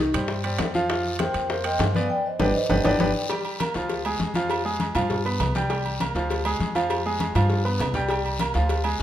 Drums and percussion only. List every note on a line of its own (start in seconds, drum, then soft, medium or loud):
0.14 high bongo soft
0.14 high conga soft
0.14 low conga medium
0.14 high timbale loud
0.14 short guiro medium
0.28 high bongo medium
0.28 high conga soft
0.28 long guiro medium
0.44 high conga soft
0.44 high timbale medium
0.59 high bongo medium
0.59 low bongo medium
0.59 high conga medium
0.59 high timbale loud
0.59 low timbale medium
0.59 short guiro medium
0.74 high bongo soft
0.74 high conga medium
0.74 short guiro medium
0.89 high bongo medium
0.89 high conga soft
0.89 high timbale medium
0.89 long guiro medium
1.05 high conga soft
1.19 high bongo medium
1.19 high conga medium
1.19 high timbale medium
1.19 short guiro medium
1.34 high timbale medium
1.34 short guiro medium
1.50 high bongo medium
1.50 high conga soft
1.50 long guiro medium
1.64 high conga soft
1.64 high timbale loud
1.79 high bongo medium
1.79 low bongo medium
1.79 high conga medium
1.79 high timbale medium
1.79 low timbale medium
1.79 short guiro medium
1.95 high conga medium
1.95 short guiro medium
2.40 low bongo loud
2.40 high conga loud
2.40 high timbale loud
2.40 long guiro loud
2.70 low bongo loud
2.70 high conga loud
2.70 high timbale loud
2.70 long guiro loud
2.84 low bongo loud
2.84 high conga loud
2.84 high timbale loud
2.84 long guiro loud
3.00 low bongo loud
3.00 high conga loud
3.00 high timbale medium
3.00 long guiro loud
3.29 cowbell loud
3.29 high conga soft
3.29 low agogo loud
3.29 long guiro medium
3.45 high conga soft
3.45 low agogo medium
3.60 cowbell medium
3.60 high conga loud
3.60 low agogo loud
3.60 short guiro medium
3.74 cowbell medium
3.74 high conga soft
3.74 short guiro medium
3.89 cowbell loud
3.89 high conga soft
3.89 low agogo medium
3.89 long guiro medium
4.05 high conga soft
4.05 low agogo loud
4.19 cowbell medium
4.19 high conga medium
4.19 short guiro medium
4.34 cowbell medium
4.34 high conga medium
4.34 low agogo medium
4.34 short guiro medium
4.50 cowbell loud
4.50 high conga soft
4.50 low agogo loud
4.50 long guiro medium
4.65 high conga soft
4.80 cowbell medium
4.80 high conga medium
4.80 low agogo medium
4.80 short guiro medium
4.95 cowbell medium
4.95 high conga soft
4.95 low conga medium
4.95 low agogo loud
4.95 short guiro medium
5.10 cowbell loud
5.10 high conga soft
5.10 low conga medium
5.10 long guiro medium
5.26 high conga soft
5.26 low agogo medium
5.40 cowbell medium
5.40 high conga medium
5.40 low timbale medium
5.40 low agogo loud
5.40 short guiro medium
5.55 cowbell medium
5.55 high conga medium
5.55 short guiro medium
5.70 cowbell loud
5.70 high conga soft
5.70 low agogo medium
5.70 long guiro medium
5.86 high conga soft
5.86 low agogo medium
6.00 cowbell medium
6.00 high conga medium
6.00 low agogo loud
6.00 short guiro medium
6.15 cowbell medium
6.15 high conga soft
6.15 short guiro medium
6.30 cowbell loud
6.30 high conga soft
6.30 low agogo medium
6.30 long guiro medium
6.45 high conga soft
6.45 low agogo loud
6.60 cowbell medium
6.60 high conga medium
6.60 short guiro medium
6.75 cowbell medium
6.75 high conga medium
6.75 low agogo medium
6.75 short guiro medium
6.90 cowbell loud
6.90 high conga soft
6.90 low agogo loud
6.90 long guiro medium
7.06 high conga soft
7.20 cowbell medium
7.20 high conga loud
7.20 low agogo medium
7.20 short guiro medium
7.35 cowbell medium
7.35 high conga medium
7.35 low agogo loud
7.35 short guiro medium
7.50 cowbell loud
7.50 long guiro medium
7.66 low agogo medium
7.79 cowbell medium
7.79 low conga loud
7.79 low timbale medium
7.79 low agogo loud
7.79 short guiro medium
7.94 cowbell medium
7.94 low conga loud
7.94 short guiro medium
8.09 cowbell loud
8.09 high conga soft
8.09 low agogo loud
8.09 long guiro medium
8.24 high conga soft
8.24 low agogo medium
8.39 cowbell medium
8.39 high conga loud
8.39 low agogo loud
8.39 short guiro medium
8.54 cowbell medium
8.54 high conga soft
8.54 short guiro medium
8.69 cowbell loud
8.69 high conga soft
8.69 low agogo medium
8.69 long guiro medium
8.84 high conga soft
8.84 low agogo loud